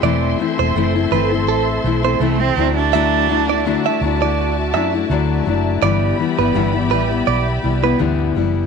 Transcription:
0.00 0.33 E1 loud
0.00 0.38 E3 medium
0.00 0.39 A3 loud
0.00 2.54 A4 medium
0.00 2.54 C5 medium
0.00 0.38 D5 loud
0.00 5.78 E5 medium
0.00 2.54 C6 medium
0.04 0.40 C4 medium
0.04 0.40 E4 medium
0.39 0.59 E3 medium
0.39 0.60 A3 medium
0.39 0.60 C4 medium
0.39 0.58 E4 medium
0.59 0.72 E1 medium
0.59 0.75 A3 medium
0.59 0.76 C4 medium
0.59 0.75 E4 medium
0.59 0.94 C5 medium
0.75 1.05 F#1 medium
0.75 0.95 E3 medium
0.75 0.96 A3 medium
0.75 0.96 C4 medium
0.75 0.94 E4 medium
0.96 1.11 A3 medium
0.96 1.13 C4 medium
0.96 1.12 E4 medium
1.11 1.48 G1 medium
1.11 1.31 E3 medium
1.11 1.32 A3 medium
1.11 1.33 C4 medium
1.11 1.31 E4 medium
1.11 1.31 B4 medium
1.32 1.84 A3 medium
1.32 1.85 C4 medium
1.32 1.84 E4 medium
1.48 1.78 A1 loud
1.48 1.67 A4 medium
1.84 2.14 B1 medium
1.84 2.04 E3 medium
1.84 2.05 A3 medium
1.84 2.05 C4 medium
1.84 2.03 E4 medium
2.04 2.20 A3 soft
2.04 2.20 C4 medium
2.04 2.20 E4 medium
2.04 2.20 C5 medium
2.20 2.50 C2 loud
2.20 2.40 E3 medium
2.20 2.41 A3 medium
2.20 2.41 C4 medium
2.20 2.39 E4 loud
2.40 2.56 A3 soft
2.40 2.74 C4 medium
2.40 2.57 C4 soft
2.40 2.56 E4 medium
2.56 3.75 D2 loud
2.56 2.92 F#3 medium
2.56 2.93 A3 medium
2.56 2.94 D4 medium
2.56 2.94 E4 medium
2.56 5.79 F#4 medium
2.56 5.79 D5 medium
2.56 5.79 A5 medium
2.76 3.81 D4 medium
2.93 3.29 D3 medium
2.93 3.27 F#3 medium
2.93 3.29 A3 loud
2.93 3.30 D4 medium
2.93 3.30 E4 loud
2.93 3.27 E5 loud
3.29 3.49 F#3 medium
3.29 3.49 A3 medium
3.29 3.49 D4 medium
3.29 3.48 E4 medium
3.49 3.65 A3 soft
3.49 3.66 D4 medium
3.49 3.65 E4 medium
3.49 3.65 D5 medium
3.65 3.85 D3 medium
3.65 3.85 F#3 medium
3.65 3.86 A3 medium
3.65 3.86 D4 loud
3.65 3.84 E4 medium
3.85 4.02 A3 soft
3.85 4.02 D4 medium
3.85 4.01 E4 medium
3.85 4.01 E5 medium
4.01 4.74 D2 medium
4.01 4.21 F#3 medium
4.01 4.22 A3 medium
4.01 4.22 D4 medium
4.01 4.20 E4 medium
4.21 4.73 A3 medium
4.21 4.74 D4 medium
4.21 4.74 E4 medium
4.21 4.56 D5 medium
4.73 5.03 F#2 medium
4.73 4.93 F#3 medium
4.73 4.94 A3 medium
4.73 4.94 D4 medium
4.73 4.92 E4 medium
4.73 4.93 E5 medium
4.94 5.10 A3 medium
4.94 5.11 D4 medium
4.94 5.10 E4 medium
5.10 5.39 D2 loud
5.10 5.46 D3 medium
5.10 5.44 F#3 medium
5.10 5.46 A3 medium
5.10 5.47 D4 medium
5.10 5.47 E4 medium
5.46 5.76 F#1 medium
5.46 5.82 F#3 medium
5.46 5.83 A3 medium
5.46 5.83 D4 medium
5.46 5.83 E4 medium
5.82 6.12 G1 loud
5.82 6.18 G2 medium
5.82 6.19 D3 medium
5.82 6.17 E3 loud
5.82 6.18 G3 loud
5.82 6.19 B3 loud
5.82 6.19 E4 medium
5.82 8.66 G4 medium
5.82 8.66 D5 medium
5.82 6.17 D5 loud
5.82 8.66 E5 medium
5.82 8.66 B5 medium
6.18 6.38 E3 medium
6.18 6.39 G3 medium
6.18 6.38 B3 medium
6.18 6.37 E4 medium
6.38 6.52 G1 medium
6.38 6.54 E3 soft
6.38 6.54 G3 soft
6.38 6.55 B3 medium
6.38 6.54 E4 medium
6.38 6.73 B4 medium
6.54 6.91 G1 medium
6.54 6.74 G2 medium
6.54 6.75 D3 medium
6.54 6.75 E3 medium
6.54 6.75 G3 medium
6.54 6.73 B3 medium
6.54 6.72 E4 loud
6.73 6.89 E3 medium
6.73 6.90 G3 medium
6.73 6.91 B3 medium
6.73 6.90 E4 medium
6.90 7.21 A1 medium
6.90 7.10 E3 medium
6.90 7.11 G3 medium
6.90 7.10 B3 medium
6.90 7.09 E4 medium
6.90 7.10 B4 medium
7.10 7.61 E3 soft
7.10 7.62 G3 medium
7.10 7.63 B3 medium
7.10 7.63 E4 medium
7.27 7.57 B1 medium
7.27 7.46 D5 medium
7.62 7.94 C2 medium
7.62 7.83 E3 medium
7.62 7.83 G3 medium
7.62 7.83 B3 medium
7.62 7.81 E4 medium
7.82 7.98 E3 soft
7.82 7.99 G3 medium
7.82 7.99 B3 medium
7.82 7.99 E4 medium
7.82 7.99 B4 medium
7.99 8.30 D2 medium
7.99 8.36 G2 medium
7.99 8.36 D3 medium
7.99 8.34 E3 medium
7.99 8.35 G3 medium
7.99 8.36 B3 loud
7.99 8.37 E4 medium
8.35 8.66 F#1 medium
8.35 8.66 E3 medium
8.35 8.66 G3 medium
8.35 8.66 B3 medium
8.35 8.66 E4 medium

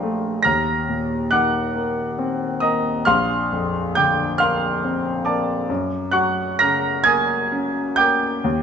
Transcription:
0.00 0.41 A#1 soft
0.00 0.47 A#2 soft
0.00 0.47 G3 soft
0.00 0.03 A3 soft
0.00 0.45 A3 soft
0.00 0.28 D4 soft
0.00 0.46 A#4 soft
0.00 0.46 C5 medium
0.00 0.46 F5 soft
0.00 0.47 G5 soft
0.00 0.44 A#5 medium
0.00 0.47 C6 medium
0.43 3.03 D#2 soft
0.43 1.27 A#5 medium
0.43 1.27 F6 medium
0.43 1.30 A#6 medium
0.89 1.58 A#2 soft
1.31 2.02 D#3 soft
1.31 2.59 F#5 medium
1.31 2.59 D6 medium
1.31 2.62 F#6 medium
1.76 2.45 A#3 soft
2.19 2.89 C4 soft
2.60 3.07 A#3 soft
2.60 3.03 D#5 medium
2.60 3.04 A#5 soft
2.60 3.06 D#6 medium
3.05 5.65 A#1 soft
3.05 3.92 F5 medium
3.05 3.92 C6 medium
3.05 3.95 F6 medium
3.52 4.23 F2 soft
3.95 4.66 D3 soft
3.95 4.37 G5 medium
3.95 4.37 D6 medium
3.95 4.40 G6 medium
4.38 5.09 A#3 soft
4.38 5.22 F5 medium
4.38 5.22 C6 medium
4.38 5.25 F6 medium
4.84 5.52 C4 soft
5.25 5.70 A#3 soft
5.25 5.67 D5 soft
5.25 5.66 A5 soft
5.25 5.69 D6 medium
5.70 8.41 F#2 soft
6.11 6.86 F#3 soft
6.11 6.55 F#5 medium
6.11 6.56 C#6 medium
6.11 6.58 F#6 medium
6.59 7.33 C#3 soft
6.59 7.02 A#5 medium
6.59 7.02 F6 medium
6.59 7.05 A#6 medium
7.04 7.80 A#3 soft
7.04 7.94 G#5 medium
7.04 7.94 D#6 medium
7.04 7.98 G#6 medium
7.52 8.27 C#4 soft
7.96 8.45 A#3 soft
7.96 8.63 G5 medium
7.96 8.63 D6 medium
7.96 8.63 G6 medium
8.44 8.63 D#2 medium

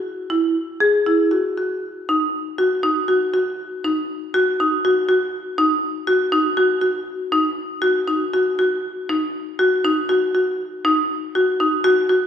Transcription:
0.30 0.63 E4 medium
0.80 0.97 G#4 medium
1.06 1.23 E4 medium
1.31 1.48 F#4 medium
1.57 1.74 F#4 soft
2.09 2.42 D#4 medium
2.58 2.75 F#4 medium
2.83 3.00 D#4 medium
3.08 3.25 F#4 medium
3.34 3.50 F#4 medium
3.84 4.17 D#4 medium
4.34 4.50 F#4 medium
4.60 4.76 D#4 medium
4.85 5.01 F#4 medium
5.09 5.25 F#4 medium
5.58 5.90 D#4 medium
6.07 6.24 F#4 medium
6.32 6.48 D#4 medium
6.57 6.73 F#4 medium
6.82 6.98 F#4 medium
7.32 7.65 D#4 medium
7.82 7.98 F#4 medium
8.08 8.24 D#4 medium
8.34 8.50 F#4 medium
8.59 8.75 F#4 medium
9.09 9.42 D#4 medium
9.59 9.76 F#4 medium
9.85 10.01 D#4 medium
10.09 10.26 F#4 medium
10.35 10.51 F#4 medium
10.85 11.17 D#4 medium
11.35 11.51 F#4 medium
11.60 11.76 D#4 medium
11.84 12.00 F#4 medium
12.09 12.25 F#4 medium

